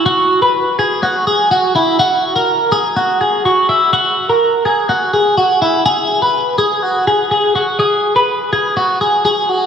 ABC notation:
X:1
M:4/4
L:1/16
Q:1/4=124
K:F#mix
V:1 name="Clean electric guitar"
F3 B3 G2 F2 G2 F2 E2 | F3 A3 G2 F2 G2 F2 E2 | F3 A3 G2 F2 G2 F2 E2 | G3 B3 G2 F2 G2 G2 F2 |
G3 B3 G2 F2 G2 G2 F2 |]